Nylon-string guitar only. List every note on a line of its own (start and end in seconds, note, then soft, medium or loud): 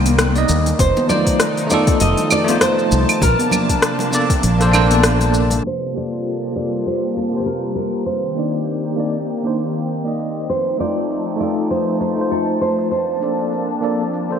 0.80 1.08 C5 loud
1.09 1.70 D5 loud
1.71 1.99 D5 loud
2.01 2.32 D#5 loud
2.32 2.61 D5 loud
2.62 3.22 C5 loud
3.23 5.00 A#4 medium
5.67 5.97 C5 medium
5.97 6.55 D5 medium
6.56 6.86 D5 medium
6.87 7.14 C5 medium
7.17 7.41 A4 medium
7.40 7.45 C5 medium
7.46 7.74 A#4 medium
7.75 8.04 A#4 medium
8.06 9.24 C5 medium
10.50 10.80 C5 medium
10.80 11.39 D5 loud
11.40 11.70 D5 medium
11.71 11.99 C5 medium
12.01 12.29 C5 medium
12.32 12.62 A4 medium
12.61 12.90 C5 medium
12.91 14.09 C5 medium